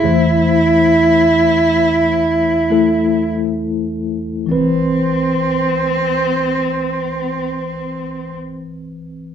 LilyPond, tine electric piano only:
<<
  \new Staff \with { instrumentName = "Tine electric piano" } { \time 4/4 \key c \major \tempo 4 = 50 <a e' c''>2 r8 <a e' a'>4. | <e c' b'>1 | }
  \new Staff \with { instrumentName = "Tine electric piano" } { \clef bass \time 4/4 \key c \major <e, e>1 | c,1 | }
>>